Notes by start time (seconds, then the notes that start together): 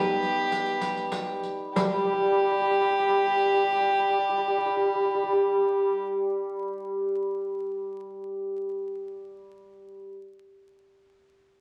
Already playing: G3 B3 D#4 G4
0.23 riq
0.52 riq
0.66 riq
0.81 riq
0.97 riq
1.12 riq
1.43 riq
1.76 G3 G4, riq
1.84 G3
1.94 G3
2.04 G3
2.13 G3
2.22 G3
2.32 G3
2.51 G3
2.61 G3
2.71 G3
2.80 G3
2.90 G3
2.99 G3
3.09 G3
3.18 G3
3.27 G3
3.36 G3
3.45 G3
3.54 G3
3.64 G3
3.72 G3
3.81 G3
3.90 G3
3.99 G3
4.10 G3
4.19 G3
4.29 G3
4.38 G3
4.48 G3
4.58 G3
4.66 G3
4.77 G3
4.85 G3
4.95 G3
5.05 G3
5.14 G3
5.23 G3
5.33 G3